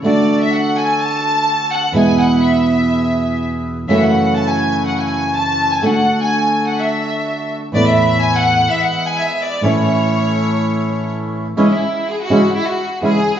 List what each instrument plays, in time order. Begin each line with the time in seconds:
0.02 nylon-string guitar D3 A3 D4 F#4, bandoneon D4 F#4 A4, violin section D5
0.42 violin section E5
0.54 violin section F#5
0.77 violin section G#5
1.01 violin section A5
1.73 violin section F#5
1.92 nylon-string guitar E2 B2 E3 G#3 B3, bandoneon B3 E4 G#4
1.96 nylon-string guitar E4, violin section G#5
2.20 violin section F#5
2.44 violin section E5
3.88 nylon-string guitar F#2 C#3 E3 A3 C#4 F#4, bandoneon A3 E4 F#4, violin section E5
3.99 violin section F#5
4.35 violin section A5
4.48 violin section G#5
4.86 violin section F#5
4.98 violin section G#5
5.34 violin section A5
5.72 violin section G#5
5.81 nylon-string guitar D3 A3 D4, bandoneon A3 D4 F#4, violin section F#5
5.85 nylon-string guitar F#4
6.21 violin section G#5
6.68 violin section F#5
6.79 violin section E5
7.72 nylon-string guitar E2 A2 E3 A3 B3, bandoneon A3 B3 E4, violin section D5
7.76 nylon-string guitar E4
7.87 violin section E5
8.22 violin section G#5
8.35 violin section F#5
8.67 bandoneon G#3 B3 E4, violin section E5
8.83 violin section F#5
9.05 violin section G#5
9.18 violin section E5
9.42 violin section D5
9.61 nylon-string guitar A2 E3 A3 C#4, bandoneon A3 C#4 E4
9.65 nylon-string guitar E4, violin section C#5
11.56 nylon-string guitar C#3 E3 G#3 C#4 E4, bandoneon G#3 C#4 E4, violin section C#4
11.71 violin section E4
12.06 violin section G#4
12.22 violin section F#4
12.30 nylon-string guitar C#3 E3 G#3 C#4 E4, bandoneon G#3 C#4 E4
12.56 violin section E4
12.67 violin section F#4
13.01 nylon-string guitar C#3 E3 G#3 C#4 E4, bandoneon G#3 C#4 E4, violin section G#4